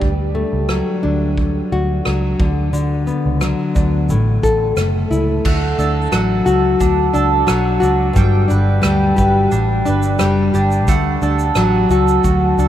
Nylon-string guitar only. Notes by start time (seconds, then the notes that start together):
Already playing: D4
0.35 A3
0.69 F#3
1.03 D4
1.72 F#4
2.06 F#3
2.39 D3
2.73 D3
3.07 B3
3.41 F#3
3.75 D4
4.10 A2
4.43 A4
4.77 A3
5.11 E4
5.79 D4
6.12 F#3
6.46 F#4
7.13 D4
7.47 F#3
7.80 F#4
8.13 G2
8.48 D4
8.82 G3
9.16 G4
9.86 D4
10.19 G3
10.54 G4
11.22 D4
11.57 F#3
11.91 F#4
12.59 D4